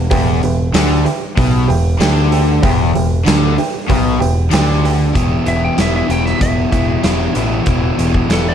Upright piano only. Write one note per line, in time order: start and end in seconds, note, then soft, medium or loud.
0.10 0.36 G4 loud
0.10 0.36 B4 loud
0.10 0.36 E5 medium
0.10 0.36 G5 loud
0.43 0.68 G4 medium
0.43 0.68 B4 medium
0.43 0.68 E5 medium
0.43 0.68 G5 loud
0.74 0.99 G4 medium
0.74 0.99 B4 medium
0.74 0.99 E5 medium
0.74 0.99 G5 medium
1.04 1.30 G4 medium
1.04 1.30 B4 medium
1.04 1.31 E5 medium
1.04 1.30 G5 loud
1.38 1.63 G4 medium
1.38 1.63 B4 medium
1.38 1.63 E5 medium
1.38 1.63 G5 loud
1.68 1.93 G4 loud
1.68 1.93 B4 loud
1.68 1.93 E5 loud
1.68 1.93 G5 loud
2.00 2.25 G4 loud
2.00 2.25 B4 medium
2.00 2.25 E5 medium
2.00 2.25 G5 loud
2.31 2.57 G4 medium
2.31 2.56 B4 medium
2.31 2.56 E5 medium
2.31 2.57 G5 loud
2.62 2.88 G4 loud
2.62 2.88 B4 loud
2.62 2.88 E5 loud
2.62 2.88 G5 loud
2.95 3.20 G4 medium
2.95 3.20 B4 medium
2.95 3.20 E5 medium
2.95 3.20 G5 medium
3.27 3.52 G4 medium
3.27 3.52 B4 medium
3.27 3.52 E5 medium
3.27 3.52 G5 medium
3.57 3.83 G4 medium
3.57 3.83 B4 medium
3.57 3.83 E5 medium
3.57 3.83 G5 medium
3.89 4.14 G4 medium
3.89 4.14 B4 medium
3.89 4.14 E5 medium
3.89 4.14 G5 medium
4.19 4.45 G4 loud
4.19 4.45 B4 medium
4.19 4.45 E5 loud
4.19 4.45 G5 loud
4.53 4.78 G4 medium
4.53 4.78 B4 medium
4.53 4.78 E5 medium
4.53 4.77 G5 loud
4.84 5.09 G4 medium
4.84 5.09 B4 medium
4.84 5.09 E5 medium
4.84 5.09 G5 medium